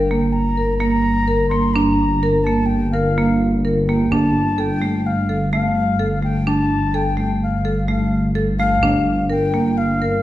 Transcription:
Already playing: analog synth bass G1, flute G5
0.11 marimba A#3
0.32 flute A#5
0.57 marimba A#4
0.78 marimba A#3, flute A#5
1.28 marimba A#4
1.49 marimba A#3, flute C6
1.74 marimba D4, flute A#5
2.23 marimba A#4
2.44 marimba A#3, flute A5
2.66 flute G5
2.92 marimba A#4, flute F5
3.18 marimba A#3
3.65 marimba A#4
3.87 marimba A#3, flute G5
4.11 analog synth bass G1, marimba D4, flute A5
4.58 marimba A4, flute G5
4.82 marimba A3
5.06 flute F5
5.29 marimba A4
5.52 marimba A3, flute F5
5.99 marimba A4
6.23 marimba A3, flute G5
6.47 marimba D4, flute A5
6.94 marimba A4, flute G5
7.17 marimba A3
7.43 flute F5
7.65 marimba A4
7.88 marimba A3, flute F5
8.35 marimba A4
8.59 marimba A3, flute F5
8.83 analog synth bass G1, marimba D4
9.30 marimba A#4, flute G5
9.54 marimba A#3
9.77 flute F5
10.02 marimba A#4

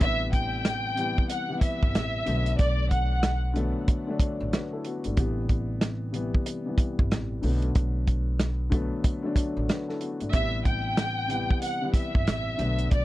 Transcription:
Already playing: upright piano A3 D4
0.00 upright bass A1, upright piano C3 E3 G3 B3, violin section E5, kick, closed hi-hat
0.33 violin section G5, kick, closed hi-hat
0.65 cross-stick, snare, closed hi-hat
0.95 upright piano C3 E3 G3 B3, closed hi-hat
1.18 kick
1.29 violin section F#5, closed hi-hat
1.49 upright piano C3 E3 G3 B3
1.61 violin section E5, kick, closed hi-hat
1.83 upright bass G1, kick
1.95 upright bass A1, cross-stick, snare, closed hi-hat
2.25 upright bass B1, upright piano D3 F#3 A3 B3, closed hi-hat
2.46 closed hi-hat
2.59 upright bass B1, violin section D5, kick, closed hi-hat
2.91 violin section F#5, kick, closed hi-hat
3.23 cross-stick, snare, closed hi-hat
3.53 upright piano D3 F#3 A3 B3, closed hi-hat
3.88 kick, closed hi-hat
4.07 upright piano D3 F#3 A3 D4
4.20 kick, closed hi-hat
4.40 upright bass A1
4.53 upright piano F#4 B4, cross-stick, snare, closed hi-hat
4.73 upright piano E4 A4
4.85 upright piano B3 F#4, closed hi-hat
5.04 upright bass G#1, upright piano A3 D4, closed hi-hat
5.16 upright bass A1, upright piano C3 E3 G3 B3, kick, closed hi-hat
5.49 kick, closed hi-hat
5.81 cross-stick, snare, closed hi-hat
6.12 upright piano C3 E3 G3 B3, closed hi-hat
6.35 kick
6.46 closed hi-hat
6.65 upright piano C3 E3 G3 B3
6.78 kick, closed hi-hat
6.99 upright bass G1, kick
7.11 upright bass A1, cross-stick, snare, closed hi-hat
7.41 upright bass B1, upright piano D3 F#3 A3 B3, open hi-hat
7.62 closed hi-hat
7.75 kick, closed hi-hat
8.07 kick, closed hi-hat
8.39 cross-stick, snare, closed hi-hat
8.70 upright piano D3 F#3 A3 B3, kick, closed hi-hat
9.04 kick, closed hi-hat
9.23 upright piano D3 F#3 A3 D4
9.36 kick, closed hi-hat
9.57 upright bass A1
9.69 upright piano F#4 B4, cross-stick, snare, closed hi-hat
9.89 upright piano E4 A4, snare
10.01 upright piano B3 F#4, closed hi-hat
10.20 upright bass G#1, upright piano A3 D4, closed hi-hat
10.32 upright bass A1, upright piano C3 E3 G3 B3, violin section E5, kick, closed hi-hat
10.65 violin section G5, kick, closed hi-hat
10.97 cross-stick, snare, closed hi-hat
11.28 upright piano C3 E3 G3 B3, closed hi-hat
11.51 kick
11.61 violin section F#5, closed hi-hat
11.81 upright piano C3 E3 G3 B3
11.94 violin section E5, kick, closed hi-hat
12.15 upright bass G1, kick
12.27 upright bass A1, cross-stick, snare, closed hi-hat
12.57 upright bass B1, upright piano D3 F#3 A3 B3, closed hi-hat
12.78 closed hi-hat
12.91 upright bass B1, violin section D5, kick, closed hi-hat

